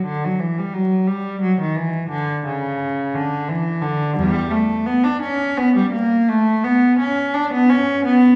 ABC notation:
X:1
M:3/4
L:1/16
Q:1/4=86
K:D
V:1 name="Cello" clef=bass
D, F, E, G, F,2 G,2 F, _E, =E,2 | D,2 C,4 D,2 E,2 D,2 | [K:Bm] [E,,G,]2 A,2 B, D C2 B, G, ^A,2 | A,2 B,2 C2 D B, C2 B,2 |]